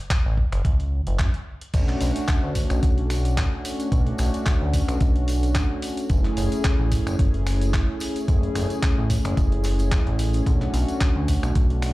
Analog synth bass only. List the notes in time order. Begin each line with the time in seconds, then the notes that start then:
0.25 A1
0.53 F#1
0.65 C#2
1.07 F#1
1.19 F#2
1.74 B1
2.01 B1
2.44 D2
2.71 B1
2.83 B1
3.92 B1
4.19 B1
4.61 D2
4.88 B1
5.01 B1
6.10 F#1
6.37 F#1
6.80 A1
7.07 F#1
7.19 F#1
8.28 F#1
8.56 F#1
8.98 A1
9.25 F#1
9.37 F#1
9.92 E1
10.07 A1
10.47 B1
10.74 B1
11.16 D2
11.43 B1
11.56 B1